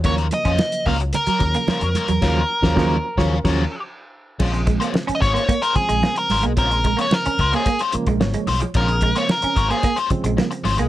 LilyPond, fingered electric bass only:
\new Staff \with { instrumentName = "Fingered electric bass" } { \clef bass \time 4/4 \key bes \minor \tempo 4 = 110 ees,8 r16 f,16 r8 des,8 r8 ees,16 r8 f,16 r16 e,16 | ees,8 r16 ees,16 ees,8 r16 ees,8 ees,8 r4 r16 | bes,,8. r8. aes,,16 r4 bes,,16 r8 aes,,16 ces,16 | bes,,8. r8. des,16 r4 bes,,16 aes,,16 r16 ces,16 r16 |
bes,,8. r8. aes,,16 r4 bes,,16 r8 aes,,16 ces,16 | }